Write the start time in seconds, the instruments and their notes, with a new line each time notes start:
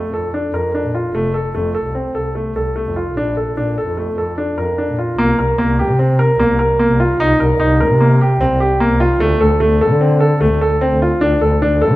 Already playing: grand piano A3
0.13 double bass F2, grand piano A4
0.34 grand piano D4
0.53 double bass F2, grand piano A#4
0.74 grand piano D4
0.84 double bass A#2
0.95 grand piano F4
1.14 double bass F1, grand piano A3
1.34 grand piano A4
1.54 double bass F2, grand piano A3
1.75 grand piano A4
1.85 double bass C2
1.95 grand piano C4
2.15 double bass C2, grand piano A4
2.35 grand piano A3
2.55 double bass C2, grand piano A4
2.76 grand piano A3
2.85 double bass F2
2.96 grand piano F4
3.16 double bass A#1, grand piano D4
3.37 grand piano A4
3.56 double bass A#2, grand piano D4
3.78 grand piano A4
3.87 double bass F2
3.97 grand piano A3
4.17 double bass F2, grand piano A4
4.38 grand piano D4
4.58 double bass F2, grand piano A#4
4.78 grand piano D4
4.88 double bass A#2
4.99 grand piano F4
5.18 double bass C2, grand piano A#3
5.38 double bass C2, grand piano A#4
5.58 double bass C2, grand piano A#3
5.79 grand piano G4
5.89 double bass C3
5.99 grand piano C4
6.19 grand piano A#4
6.39 double bass C2, grand piano A#3
6.49 double bass C2
6.59 grand piano A#4
6.79 grand piano A#3
6.89 double bass C2
7.00 grand piano F4
7.19 double bass C2, grand piano D#4
7.39 double bass C2, grand piano A#4
7.59 double bass C2, grand piano D#4
7.80 grand piano A#4
7.90 double bass C3
8.00 grand piano A#3
8.21 grand piano G4
8.40 double bass C2, grand piano C4
8.50 double bass C2
8.60 grand piano G4
8.80 grand piano A#3
8.91 double bass C2
9.00 grand piano F4
9.20 double bass D2, grand piano A3
9.40 double bass D2, grand piano A4
9.60 double bass D2, grand piano A3
9.81 grand piano A4
9.91 double bass D3
10.01 grand piano C4
10.20 grand piano A4
10.41 double bass D2, grand piano A3
10.52 double bass D2
10.61 grand piano A4
10.81 grand piano C4
10.91 double bass D2
11.02 grand piano F4
11.21 double bass D2, grand piano D4
11.41 double bass D2, grand piano A4
11.62 double bass D2, grand piano D4
11.82 grand piano A4
11.91 double bass D3